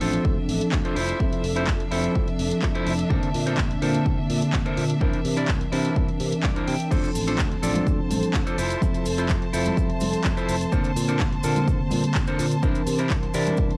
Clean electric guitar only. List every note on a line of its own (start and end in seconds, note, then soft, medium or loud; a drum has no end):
0.01 0.37 D4 medium
0.01 0.37 F4 medium
0.01 0.37 A4 medium
0.01 0.37 C5 medium
0.72 muted clean electric guitar stroke medium
0.85 0.96 D4 loud
0.85 0.95 F4 loud
0.85 0.95 A4 loud
0.85 0.95 C5 loud
0.96 1.44 E4 medium
0.96 1.44 F4 medium
0.96 1.44 A4 medium
0.96 1.44 C5 loud
1.56 1.68 E4 medium
1.56 1.68 F4 medium
1.56 1.68 A4 medium
1.56 1.68 C5 loud
1.80 muted clean electric guitar stroke soft
1.91 2.28 E4 medium
1.91 2.28 F4 medium
1.91 2.28 A4 medium
1.91 2.28 C5 medium
2.63 muted clean electric guitar stroke medium
2.75 2.93 E4 loud
2.75 2.93 F4 medium
2.75 2.93 A4 loud
2.75 2.93 C5 loud
3.10 3.28 D4 loud
3.10 3.28 A4 medium
3.10 3.29 A#4 medium
3.10 3.29 C5 loud
3.46 3.58 D4 medium
3.46 3.58 A4 medium
3.46 3.58 A#4 medium
3.46 3.58 C5 loud
3.70 muted clean electric guitar stroke soft
3.82 4.18 D4 medium
3.82 4.18 A4 medium
3.82 4.18 A#4 medium
3.82 4.18 C5 loud
4.53 muted clean electric guitar stroke medium
4.66 4.83 D4 loud
4.66 4.83 A4 loud
4.66 4.83 A#4 loud
4.66 4.84 C5 loud
5.01 5.19 D4 loud
5.01 5.19 E4 medium
5.01 5.19 A#4 loud
5.01 5.19 C5 loud
5.37 5.49 D4 medium
5.37 5.49 E4 medium
5.37 5.49 A#4 medium
5.37 5.49 D5 loud
5.61 muted clean electric guitar stroke soft
5.72 6.08 D4 medium
5.72 6.09 E4 medium
5.72 6.09 A#4 medium
5.72 6.09 C5 loud
6.44 6.66 D5 medium
6.44 muted clean electric guitar stroke medium
6.56 6.74 D4 loud
6.56 6.74 E4 medium
6.56 6.74 A#4 loud
6.56 6.74 C5 loud
6.68 6.90 G5 medium
6.91 7.09 D4 loud
6.91 7.10 F4 medium
6.91 7.10 A4 medium
6.91 7.10 C5 loud
7.27 7.39 D4 medium
7.27 7.39 F4 medium
7.27 7.39 A4 medium
7.27 7.39 C5 medium
7.51 muted clean electric guitar stroke soft
7.63 7.99 D4 medium
7.63 7.99 F4 medium
7.63 7.99 A4 medium
7.63 7.99 D5 medium
8.34 muted clean electric guitar stroke medium
8.47 8.58 D4 loud
8.47 8.57 F4 medium
8.47 8.57 A4 loud
8.47 8.57 C5 loud
8.58 9.06 E4 medium
8.58 9.06 F4 medium
8.58 9.06 A4 medium
8.58 9.06 C5 medium
9.18 9.30 E4 medium
9.18 9.30 F4 medium
9.18 9.30 A4 medium
9.18 9.30 C5 medium
9.42 muted clean electric guitar stroke soft
9.53 9.90 E4 medium
9.53 9.90 F4 medium
9.53 9.90 A4 medium
9.53 9.90 C5 loud
10.25 muted clean electric guitar stroke medium
10.37 10.55 E4 loud
10.37 10.55 F4 medium
10.37 10.55 A4 loud
10.37 10.55 C5 loud
10.72 10.90 D4 loud
10.72 10.91 A4 loud
10.72 10.91 A#4 medium
10.72 10.91 C5 loud
11.08 11.20 D4 medium
11.08 11.20 A4 medium
11.08 11.20 A#4 medium
11.08 11.20 C5 loud
11.32 muted clean electric guitar stroke soft
11.44 11.80 D4 medium
11.44 11.80 A4 medium
11.44 11.80 A#4 medium
11.44 11.80 C5 medium
12.15 muted clean electric guitar stroke medium
12.28 12.45 D4 loud
12.28 12.45 A4 loud
12.28 12.45 A#4 loud
12.28 12.45 C5 loud
12.63 12.81 D4 loud
12.63 12.81 E4 medium
12.63 12.81 A#4 loud
12.63 12.81 C5 loud
12.99 13.10 D4 medium
12.99 13.11 E4 medium
12.99 13.11 A#4 medium
12.99 13.11 C5 medium
13.23 muted clean electric guitar stroke soft
13.34 13.71 D4 medium
13.34 13.71 E4 medium
13.34 13.71 A#4 medium
13.34 13.71 D5 loud